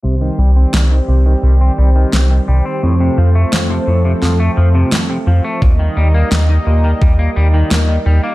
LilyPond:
<<
  \new Staff \with { instrumentName = "Analog synth pad" } { \time 4/4 \key c \dorian \tempo 4 = 86 << { c''1~ | c''1 | ees''1 | } \\ { <ees g c' g'>1 | <f a c' a'>1 | <g bes ees' bes'>1 | } >> }
  \new Staff \with { instrumentName = "Clean electric guitar" } { \clef bass \time 4/4 \key c \dorian c16 ees16 g16 c'16 g16 ees16 c16 ees16 g16 c'16 g16 ees16 c16 ees16 g16 c'16 | a,16 c16 f16 a16 f16 c16 a,16 c16 f16 a16 f16 c16 a,16 c16 f16 a16 | bes,16 ees16 g16 bes16 g16 ees16 bes,16 ees16 g16 bes16 g16 ees16 bes,16 ees16 g16 bes16 | }
  \new Staff \with { instrumentName = "Analog synth bass" } { \clef bass \time 4/4 \key c \dorian c,8 c,8 c,8 c,8 c,8 c,8 c,8 c,8 | f,8 f,8 f,8 f,8 f,8 f,8 f,8 f,8 | ees,8 ees,8 ees,8 ees,8 ees,8 ees,8 ees,8 ees,8 | }
  \new DrumStaff \with { instrumentName = "Drums" } \drummode { \time 4/4 r4 sn4 r4 sn4 | r4 sn4 sn4 sn4 | bd4 sn4 bd4 sn4 | }
>>